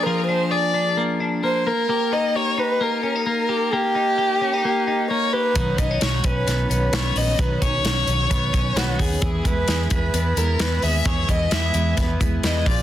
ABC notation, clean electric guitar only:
X:1
M:4/4
L:1/16
Q:1/4=131
K:Elyd
V:1 name="Clean electric guitar"
[^E,A,=DG]2 D2 G2 D2 A,2 D2 A,2 A,2 | [A,=G]2 D2 G2 D2 A,2 C D A,2 G2 | [A,=G]2 D2 G2 C D A,2 D2 A,2 G2 | [D,F]2 B, C F2 C2 B,2 C2 B,2 F2 |
[D,F]2 C2 F2 C2 B,2 C2 B,2 F2 | [E,G]2 E2 G2 E2 B,2 E2 B,2 G2 | [E,G]2 E2 F G E2 B,2 E2 B,2 ^E,2 |]